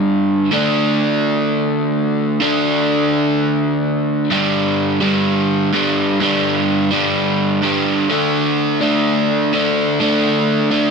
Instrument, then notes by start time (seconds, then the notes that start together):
overdriven electric guitar
Already playing: G2 D3 G3
0.52 D3 A3 D4
2.41 D3 A3 D4
4.30 G2 D3 G3
5.01 G2 D3 G3
5.73 G2 D3 G3
6.20 G2 D3 G3
6.92 G2 D3 G3
7.63 G2 D3 G3
8.09 D3 A3 D4
8.81 D3 A3 D4
9.53 D3 A3 D4
10.00 D3 A3 D4
10.71 D3 A3 D4